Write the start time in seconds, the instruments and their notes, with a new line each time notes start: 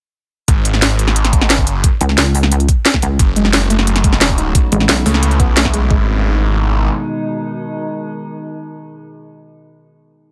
0.48 detuned saw bass G#1, kick, closed hi-hat
0.65 detuned saw bass G#1, closed hi-hat
0.74 snare
0.82 snare, closed hi-hat
0.99 closed hi-hat
1.08 snare
1.16 closed hi-hat
1.25 snare, closed hi-hat
1.33 kick, closed hi-hat
1.41 snare
1.48 detuned saw bass G1, snare, closed hi-hat
1.58 kick
1.67 closed hi-hat
1.71 detuned saw bass F#1
1.84 kick, closed hi-hat
2.01 wobble bass C#2, closed hi-hat
2.09 snare
2.18 wobble bass C#2, snare, closed hi-hat
2.35 open hi-hat
2.43 snare
2.52 closed hi-hat
2.60 closed hi-hat
2.69 kick, closed hi-hat
2.85 snare, closed hi-hat
2.94 kick, snare
3.02 wobble bass C#2, closed hi-hat
3.19 detuned saw bass F#1, synth drone C#3 F#3 A3 F#4, kick, closed hi-hat
3.36 detuned saw bass F#1, synth pluck G#3, closed hi-hat
3.45 snare
3.53 snare, closed hi-hat
3.70 synth pluck A3, closed hi-hat
3.79 snare
3.87 closed hi-hat
3.96 snare, closed hi-hat
4.04 synth pluck G#3, kick, closed hi-hat
4.13 snare
4.21 snare, closed hi-hat
4.30 kick
4.38 synth pluck D#4, closed hi-hat
4.55 synth drone E3 E4, kick, closed hi-hat
4.72 wobble bass A1, synth pluck G#3, closed hi-hat
4.80 snare
4.89 wobble bass B1, snare, closed hi-hat
5.06 detuned saw bass C#2, synth pluck A3, open hi-hat
5.14 snare
5.23 closed hi-hat
5.31 closed hi-hat
5.40 detuned saw bass B1, synth pluck B3, kick, closed hi-hat
5.57 synth pluck A3, snare, closed hi-hat
5.65 kick, snare
5.74 synth pluck G#3, closed hi-hat
5.91 detuned saw bass G#1, synth drone B2 D#3 G#3 D#4, synth pluck G#3, kick